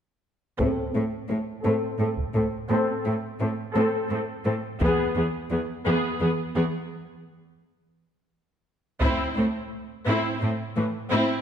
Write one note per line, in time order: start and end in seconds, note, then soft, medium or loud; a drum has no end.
0.59 0.68 A2 soft
0.59 0.92 C4 medium
0.59 0.92 A4 soft
0.59 taiko soft
0.94 1.03 A2 soft
0.94 1.02 C4 soft
0.94 1.02 A4 soft
1.29 1.37 A2 soft
1.29 1.38 C4 soft
1.29 1.38 A4 soft
1.65 1.73 A2 soft
1.65 1.98 C4 soft
1.65 1.97 A4 soft
1.99 2.07 A2 soft
1.99 2.08 C4 soft
1.99 2.08 A4 soft
2.18 taiko soft
2.35 2.43 A2 soft
2.35 2.44 C4 soft
2.35 2.43 A4 soft
2.69 2.77 A2 soft
2.69 3.03 C4 medium
2.69 3.03 A4 soft
3.06 3.14 A2 soft
3.06 3.14 C4 soft
3.06 3.14 A4 soft
3.40 3.48 A2 soft
3.40 3.50 C4 soft
3.40 3.49 A4 soft
3.75 3.83 A2 medium
3.75 4.08 C4 soft
3.75 4.08 A4 soft
4.10 4.18 A2 soft
4.10 4.20 C4 soft
4.10 4.20 A4 soft
4.45 4.53 A2 soft
4.45 4.54 C4 soft
4.45 4.54 A4 soft
4.80 4.88 E2 medium
4.80 5.14 B3 medium
4.80 5.14 G#4 medium
4.80 taiko soft
5.16 5.24 E2 soft
5.16 5.24 B3 soft
5.16 5.24 G#4 soft
5.51 5.59 E2 soft
5.51 5.59 B3 soft
5.51 5.59 G#4 soft
5.86 5.94 E2 medium
5.86 6.19 B3 medium
5.86 6.19 G#4 medium
6.21 6.29 E2 soft
6.21 6.29 B3 soft
6.21 6.29 G#4 soft
6.56 6.64 E2 soft
6.56 6.64 B3 soft
6.56 6.64 G#4 soft
9.02 9.10 A2 soft
9.02 9.34 C4 medium
9.02 9.34 E4 medium
9.02 taiko soft
9.36 9.45 A2 soft
9.36 9.44 A3 soft
9.36 9.44 C4 soft
10.07 10.15 A2 medium
10.07 10.39 C4 medium
10.07 10.39 E4 soft
10.42 10.50 A2 soft
10.42 10.50 A3 soft
10.42 10.50 C4 soft
10.77 10.85 A2 soft
10.77 10.85 E3 soft
10.77 10.85 A3 soft
11.11 11.20 A2 soft
11.11 11.41 C4 medium
11.11 11.41 E4 medium